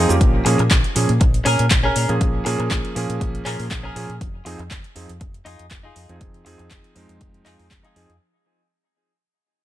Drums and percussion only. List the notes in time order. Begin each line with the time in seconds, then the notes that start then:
0.09 closed hi-hat, cabasa
0.21 kick, closed hi-hat
0.46 open hi-hat
0.59 closed hi-hat
0.71 kick, clap, closed hi-hat
0.84 closed hi-hat
0.96 open hi-hat
1.09 closed hi-hat
1.21 kick, closed hi-hat
1.34 closed hi-hat
1.46 open hi-hat
1.59 closed hi-hat
1.71 kick, clap, closed hi-hat
1.96 open hi-hat
2.09 closed hi-hat
2.21 kick, closed hi-hat
2.46 open hi-hat
2.60 closed hi-hat
2.71 kick, clap, closed hi-hat
2.85 closed hi-hat
2.96 open hi-hat
3.10 closed hi-hat
3.21 kick, closed hi-hat
3.35 closed hi-hat
3.46 clap, open hi-hat
3.60 open hi-hat
3.71 kick, clap, closed hi-hat
3.96 open hi-hat
4.10 closed hi-hat
4.21 kick, closed hi-hat
4.46 open hi-hat
4.59 closed hi-hat
4.71 kick, clap, closed hi-hat
4.84 closed hi-hat
4.96 open hi-hat
5.09 closed hi-hat
5.21 kick, closed hi-hat
5.34 closed hi-hat
5.46 open hi-hat
5.59 closed hi-hat
5.71 kick, clap, closed hi-hat
5.96 open hi-hat
6.09 closed hi-hat
6.21 kick, closed hi-hat
6.34 closed hi-hat
6.46 open hi-hat
6.59 closed hi-hat
6.71 kick, clap, closed hi-hat
6.84 closed hi-hat
6.96 open hi-hat
7.09 closed hi-hat
7.21 kick, closed hi-hat
7.34 closed hi-hat
7.46 clap, open hi-hat
7.60 open hi-hat
7.71 kick, clap, closed hi-hat
7.85 closed hi-hat
7.96 open hi-hat
8.10 closed hi-hat